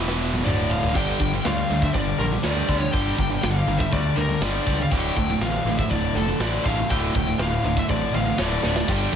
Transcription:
Already playing: picked electric bass E1, distorted electric guitar E2 B2 E3
0.08 snare
0.34 high tom
0.44 picked electric bass D1, distorted electric guitar D2 A2 D3, lead electric guitar D5, mid tom
0.70 lead electric guitar F5, floor tom
0.83 floor tom
0.95 picked electric bass G1, distorted electric guitar G2 D3 G3, lead electric guitar G5, kick, crash
1.20 picked electric bass G1, distorted electric guitar G2 D3, overdriven electric guitar G3, kick
1.33 distorted electric guitar G2 D3
1.45 picked electric bass D2, distorted electric guitar G2 D3, overdriven electric guitar G3, lead electric guitar F5, snare, crash
1.70 picked electric bass D2, distorted electric guitar G2 D3, overdriven electric guitar G3
1.82 distorted electric guitar G2 D3, lead electric guitar E5, kick
1.94 picked electric bass G1, distorted electric guitar G2 D3, overdriven electric guitar G3, lead electric guitar D5, kick, crash
2.18 picked electric bass A#1, distorted electric guitar G2 D3, overdriven electric guitar G3, lead electric guitar A#4
2.32 distorted electric guitar G2 D3
2.44 picked electric bass D2, distorted electric guitar G2 D3 G3, lead electric guitar D5, snare, crash
2.69 picked electric bass D2, distorted electric guitar G2 D3 G3, kick
2.78 distorted electric guitar G2 D3, lead electric guitar C#5
2.91 picked electric bass G1, distorted electric guitar G2 D3 G3, lead electric guitar G5, kick, crash
3.17 picked electric bass G1, distorted electric guitar G2 D3, overdriven electric guitar G3, kick
3.30 distorted electric guitar G2 D3
3.42 picked electric bass G1, distorted electric guitar G2 D3, overdriven electric guitar G3, lead electric guitar F5, snare, crash
3.67 picked electric bass G1, distorted electric guitar G2 D3, overdriven electric guitar G3
3.79 distorted electric guitar G2 D3, lead electric guitar E5, kick
3.92 picked electric bass D2, distorted electric guitar G2 D3, overdriven electric guitar G3, lead electric guitar D5, kick, crash
4.16 picked electric bass D2, distorted electric guitar G2 D3, overdriven electric guitar G3, lead electric guitar A#4
4.28 distorted electric guitar G2 D3
4.41 picked electric bass G1, distorted electric guitar G2 D3 G3, lead electric guitar D5, snare, crash
4.66 picked electric bass C#2, distorted electric guitar G2 D3 G3, kick
4.79 distorted electric guitar G2 D3, lead electric guitar F5
4.90 picked electric bass D1, distorted electric guitar D2 A2 D3, lead electric guitar G5, kick, crash
5.17 picked electric bass D1, distorted electric guitar D2 A2, overdriven electric guitar D3, kick
5.30 distorted electric guitar D2 A2
5.41 picked electric bass A1, distorted electric guitar D2 A2, overdriven electric guitar D3, lead electric guitar F5, snare, crash
5.65 picked electric bass A1, distorted electric guitar D2 A2, overdriven electric guitar D3
5.78 distorted electric guitar D2 A2, lead electric guitar E5, kick
5.91 picked electric bass D1, distorted electric guitar D2 A2, overdriven electric guitar D3, lead electric guitar D5, kick, crash
6.15 picked electric bass F1, distorted electric guitar D2 A2, overdriven electric guitar D3, lead electric guitar A4
6.29 distorted electric guitar D2 A2
6.40 picked electric bass A1, distorted electric guitar D2 A2 D3, lead electric guitar D5, snare, crash
6.65 picked electric bass A1, distorted electric guitar D2 A2 D3, lead electric guitar F5, kick
6.78 distorted electric guitar D2 A2
6.89 picked electric bass D1, distorted electric guitar D2 A2 D3, lead electric guitar G5, kick, crash
7.15 picked electric bass D1, distorted electric guitar D2 A2, overdriven electric guitar D3, kick
7.27 distorted electric guitar D2 A2
7.39 picked electric bass D1, distorted electric guitar D2 A2, overdriven electric guitar D3, lead electric guitar F5, snare, crash
7.64 picked electric bass D1, distorted electric guitar D2 A2, overdriven electric guitar D3
7.77 distorted electric guitar D2 A2, lead electric guitar E5, kick
7.88 picked electric bass A1, distorted electric guitar D2 A2, overdriven electric guitar D3, lead electric guitar D5, kick, crash
8.13 picked electric bass A1, distorted electric guitar D2 A2, overdriven electric guitar D3, lead electric guitar F5
8.25 distorted electric guitar D2 A2
8.38 picked electric bass D1, distorted electric guitar D2 A2 D3, lead electric guitar D5, snare, crash
8.63 picked electric bass D1, distorted electric guitar D2 A2 D3, snare
8.75 distorted electric guitar D2 A2, snare
8.86 picked electric bass G1, distorted electric guitar G2 D3 G3, lead electric guitar G5, kick, crash
9.11 distorted electric guitar G2 D3

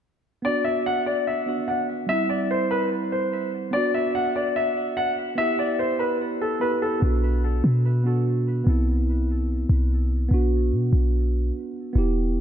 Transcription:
0.42 tine electric piano B3 D4, grand piano D5
0.47 tine electric piano F#4
0.64 grand piano E5
0.86 grand piano F#5
1.06 grand piano D5
1.27 grand piano E5
1.46 tine electric piano B3 D4 F#4
1.68 grand piano F#5
2.06 tine electric piano G3 C4, grand piano E5
2.12 tine electric piano E4
2.29 grand piano D5
2.51 grand piano C5
2.71 grand piano B4
3.12 grand piano C5
3.71 tine electric piano B3 D4, grand piano D5
3.76 tine electric piano F#4
3.94 grand piano E5
4.15 grand piano F#5
4.36 grand piano D5
4.56 grand piano E5
4.97 grand piano F#5
5.35 tine electric piano B3 E4, grand piano E5
5.41 tine electric piano G4
5.59 grand piano D5
5.79 grand piano C5
5.99 grand piano B4
6.41 grand piano A4
6.60 tine electric piano B3 E4 G4, grand piano B4
6.82 grand piano A4
7.00 808-style bass B1, tine electric piano B3 D4
7.05 tine electric piano F#4
7.64 808-style bass B2
8.04 tine electric piano B3 D4 F#4
8.64 808-style bass C2, tine electric piano B3 C4
8.69 tine electric piano E4
9.69 808-style bass C2
10.29 808-style bass B1, tine electric piano B3 D4
10.34 tine electric piano F#4
10.72 808-style bass B2
10.93 808-style bass B1
11.93 808-style bass E1, tine electric piano B3 E4
11.98 tine electric piano G4

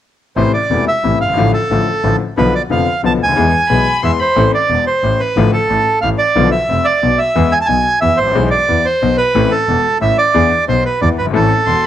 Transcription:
0.36 grand piano A1 A2 C3 E3 A3 E4, double bass A1, bandoneon C5
0.54 bandoneon D5
0.70 grand piano E1 E2 C3 E3 A3 E4, double bass E1
0.88 bandoneon E5
1.04 grand piano A1 A2 C3 E3 A3 E4, double bass A1
1.21 double bass G1, bandoneon F5
1.25 grand piano F#1 G1
1.33 grand piano G#1 D3 F3, double bass A1
1.38 grand piano A1 A2 A3 F4
1.54 bandoneon A4
1.71 double bass A1, grand piano A1 A2 D3 F3 A3 F4
2.04 grand piano A1 A2 D3 F3 A3 F4, double bass A1
2.37 grand piano B1 B2 D3 F3 B3 F4, double bass B1, bandoneon B4
2.55 bandoneon D5
2.70 double bass F1, grand piano F1 F2 D3 F3 B3 F4, bandoneon F5
3.04 double bass B1, grand piano B1 B2 D3 F3 B3 F4, bandoneon A5
3.21 double bass D2, bandoneon G#5
3.25 grand piano C#2 D2
3.32 grand piano D#2
3.36 grand piano E2 E3 G#3 B3 G#4, double bass E2
3.53 violin G#5
3.69 grand piano B1 B2 E3 G#3 B3 G#4, double bass B1, violin B5
4.03 grand piano E2 E3 G#3 B3 G#4, double bass E2, bandoneon E5, violin C6
4.20 bandoneon C5, violin B5
4.36 grand piano A1 A2 E3 A3 C4 A4, double bass A1
4.54 bandoneon D5
4.70 grand piano E1 E2, double bass E1
4.87 bandoneon C5
5.03 double bass A1, grand piano A1 A2
5.20 bandoneon B4
5.37 double bass A1, grand piano A1 A2 D3 F3 A3 F4
5.53 bandoneon A4
5.70 grand piano A1 A2, double bass A1
6.01 double bass A1, grand piano A1 A2, bandoneon F5
6.18 bandoneon D5
6.36 double bass B1, grand piano B1 B2 D3 F3 B3 F4
6.51 bandoneon E5
6.69 grand piano F1 F2, double bass F1
6.85 bandoneon D5
7.03 double bass B1, grand piano B1 B2
7.18 bandoneon E5
7.36 grand piano E2 E3 G#3 B3 G#4, double bass E2
7.52 bandoneon G#5
7.61 bandoneon A5
7.66 grand piano B1 B2, double bass B1, bandoneon G#5
8.01 grand piano E2 E3, double bass E2, bandoneon E5
8.17 double bass A1, bandoneon C5
8.23 grand piano G#1 A1
8.31 grand piano A#1 B2 E3 G#3
8.35 grand piano B1 B3 G#4, double bass B1
8.51 bandoneon D5
8.68 grand piano E2 E3, double bass E2
8.85 bandoneon C5
9.02 grand piano B1 B2, double bass B1
9.17 bandoneon B4
9.34 grand piano A1 A2 E3 A3 C4 A4, double bass A1
9.51 bandoneon A4
9.68 grand piano E1 E2, double bass E1
10.01 grand piano A1 A2, double bass A1, bandoneon E5
10.18 bandoneon D5
10.34 grand piano E2 E3 B3 D4 G#4, double bass E2
10.68 grand piano B1 B2, double bass B1, bandoneon C5
10.85 bandoneon B4
11.02 grand piano E2 E3, double bass E2, bandoneon D5
11.18 grand piano F#1, double bass G1, bandoneon B4
11.26 grand piano G1
11.30 grand piano G#1 A1 A2 E3 A3 C4 A4
11.35 double bass A1, bandoneon A4
11.67 grand piano E1 E2, double bass E1, violin C6

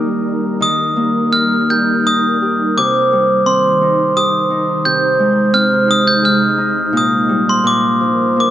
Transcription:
Already playing: harp D#3 A#3 G4 A#4, ambient pad G3 D#4 A#4, glockenspiel D#6
0.61 harp D#3, ambient pad G3 D#4 A#4, glockenspiel D#6
0.96 harp A#3
1.32 harp D#4, glockenspiel F6
1.70 harp G4, glockenspiel G6
2.06 harp A#4, glockenspiel D#6
2.42 harp G4
2.77 harp C3, ambient pad D#3 D#4 C5, glockenspiel D6
3.13 harp G3
3.46 harp C4, glockenspiel C6
3.81 harp D#4
4.16 harp G4, glockenspiel D#6
4.50 harp D#4
4.85 harp C3, ambient pad C3 G#3 D#4, glockenspiel G6
5.19 harp G#3
5.53 harp C4, glockenspiel F6
5.88 harp D#4, glockenspiel D#6
6.07 glockenspiel G6
6.22 harp G#4, glockenspiel F6
6.58 harp D#4
6.93 harp A#2, ambient pad A#4
6.97 glockenspiel D#6
7.29 harp G3
7.49 glockenspiel C6
7.64 harp A#2, ambient pad F3 D4, glockenspiel D6
8.01 harp F3
8.37 harp A#3, glockenspiel D6

